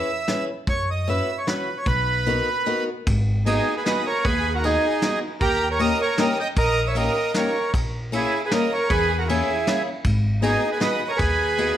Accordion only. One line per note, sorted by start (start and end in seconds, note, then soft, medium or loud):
0.00 0.45 E5 loud
0.69 0.90 C#5 loud
0.91 1.09 D#5 medium
1.09 1.39 E5 loud
1.38 1.47 C#5 medium
1.47 1.78 B4 medium
1.77 1.87 C#5 medium
1.87 2.84 B4 loud
3.46 3.75 D#4 medium
3.46 3.75 G#4 medium
3.77 3.85 G#4 medium
3.77 3.83 B4 medium
3.85 4.05 B4 medium
3.85 4.07 D#5 medium
4.06 4.24 A#4 medium
4.06 4.25 C#5 medium
4.24 4.53 G#4 medium
4.24 4.55 B4 loud
4.55 4.64 F#4 soft
4.55 4.64 A#4 medium
4.64 5.20 D#4 medium
4.64 5.19 G#4 loud
5.41 5.69 G4 medium
5.41 5.69 A#4 loud
5.70 5.78 A#4 medium
5.70 5.80 C#5 medium
5.80 5.99 A#4 medium
5.80 6.01 D#5 loud
6.01 6.18 A#4 medium
6.01 6.20 C#5 loud
6.19 6.38 A#4 medium
6.19 6.38 D#5 medium
6.40 6.48 D#5 medium
6.40 6.48 G5 medium
6.58 6.85 A#4 medium
6.58 6.88 D#5 loud
6.87 6.95 C#5 soft
6.87 6.96 E5 medium
6.96 7.32 A#4 medium
6.96 7.36 D#5 medium
7.35 7.71 A#4 medium
7.35 7.72 C#5 medium
8.14 8.41 E4 medium
8.14 8.42 G#4 medium
8.44 8.52 G#4 medium
8.44 8.52 B4 medium
8.52 8.71 A#4 medium
8.52 8.73 D#5 medium
8.73 8.89 A#4 medium
8.73 8.91 C#5 medium
8.90 9.17 G#4 medium
8.90 9.20 B4 loud
9.19 9.28 F#4 medium
9.19 9.28 A#4 medium
9.28 9.83 E4 medium
9.28 9.83 G#4 medium
10.42 10.70 D#4 medium
10.42 10.71 G#4 loud
10.72 10.81 G#4 medium
10.72 10.79 B4 medium
10.80 11.08 B4 medium
10.80 11.11 D#5 medium
11.08 11.18 A#4 medium
11.08 11.19 C#5 medium
11.17 11.77 G#4 medium
11.17 11.77 B4 loud